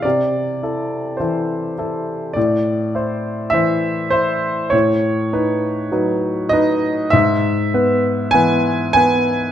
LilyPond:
\new Staff \with { instrumentName = "Grand piano" } { \time 4/4 \key a \minor \tempo 4 = 50 << { d''4 c''4 d''4 e''8 c''8 | cis''4. dis''8 e''4 gis''8 gis''8 | } \\ { c8 <e' a'>8 <e e' a'>8 <e' a'>8 a,8 <e' c''>8 <e e' c''>8 e'8 | a,8 <dis' b'>8 <fis dis' b'>8 <dis' b'>8 gis,8 <b b'>8 <e b b'>8 <b b'>8 | } >> }